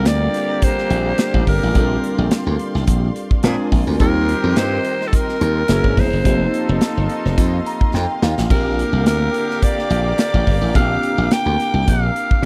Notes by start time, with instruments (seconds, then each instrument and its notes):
Already playing: horn section D3 A#3 G4, tine electric piano G3 C4 D4 F4 A#4, string section G4 D5 F5 A#5
0.05 slap bass D2, alto saxophone D5, snare, closed hi-hat
0.34 snare, closed hi-hat
0.62 alto saxophone C5, kick, closed hi-hat
0.78 snare
0.90 slap bass A#1, closed hi-hat
1.18 snare, closed hi-hat
1.34 slap bass A1, kick
1.47 slap bass G1, alto saxophone A#4, kick, open hi-hat
1.63 slap bass A1
1.74 slap bass A#1, tine electric piano G3 C4 D4 F4 A4, string section C6, kick, closed hi-hat
1.83 tine electric piano A#4
2.04 closed hi-hat
2.18 slap bass A#1
2.31 snare, closed hi-hat
2.47 slap bass D2
2.59 closed hi-hat
2.75 slap bass C2, snare
2.87 slap bass A#1, kick, closed hi-hat
3.16 closed hi-hat
3.31 kick
3.43 slap bass A#2, horn section F3 D4 G#4, tine electric piano G#3 C4 D4 F4 A#4, string section A#4 D5 G#5 C6, snare, closed hi-hat
3.72 slap bass A#1, kick, open hi-hat
3.87 slap bass D2
3.99 slap bass D#2, horn section D#3 C4 G4, tine electric piano G3 C4 D#4 F4 A#4, alto saxophone A#4, string section D#5 G5, kick, closed hi-hat
4.29 closed hi-hat
4.44 slap bass F2
4.56 slap bass G2, alto saxophone C5, snare, closed hi-hat
4.85 closed hi-hat
5.01 snare
5.07 alto saxophone A4
5.13 alto saxophone A#4, kick, closed hi-hat
5.29 snare
5.41 slap bass D#2, closed hi-hat
5.68 slap bass F#1, horn section E3 C#4 A#4, tine electric piano A#3 C#4 E4 F#4 G#4, string section G#4 E5 F#5 A#5, snare, closed hi-hat
5.84 slap bass G#1, kick
5.97 slap bass E1, alto saxophone C5, kick, open hi-hat
6.13 slap bass F#1
6.24 slap bass F1, horn section F3 D#4 A4, tine electric piano A#3 C4 D#4 F4 G4, string section A#3 D#5 F5 C6, kick, closed hi-hat
6.54 closed hi-hat
6.69 slap bass F1
6.81 snare, closed hi-hat
6.97 slap bass G1
7.09 closed hi-hat
7.25 slap bass F1, snare
7.38 slap bass F2, kick, closed hi-hat
7.66 tine electric piano A#5, closed hi-hat
7.81 kick
7.94 slap bass F2, tine electric piano G5, snare
8.22 slap bass D#2, tine electric piano F5, snare
8.38 slap bass A1, snare
8.49 slap bass A#1, horn section D3 A#3 G4, tine electric piano A#3 C4 D4 F4 G4, string section A#4 G5 D6, alto saxophone A#4, kick, crash
8.79 closed hi-hat
8.93 slap bass C2
9.06 slap bass D2, alto saxophone A#4, snare, closed hi-hat
9.34 closed hi-hat
9.50 snare
9.63 alto saxophone D5, kick, closed hi-hat
9.79 snare
9.90 slap bass A#1, closed hi-hat
10.18 alto saxophone D5, snare, closed hi-hat
10.34 slap bass A1, kick
10.47 slap bass G1, kick, open hi-hat
10.61 slap bass A1
10.75 slap bass A#1, tine electric piano A#3 C4 D4 F4 G4, alto saxophone F5, kick, closed hi-hat
11.03 closed hi-hat
11.18 slap bass A#1
11.31 alto saxophone G5, snare, closed hi-hat
11.46 slap bass D2
11.60 snare, closed hi-hat
11.74 slap bass C2
11.88 slap bass A#1, alto saxophone F5, kick, closed hi-hat
12.16 closed hi-hat
12.31 kick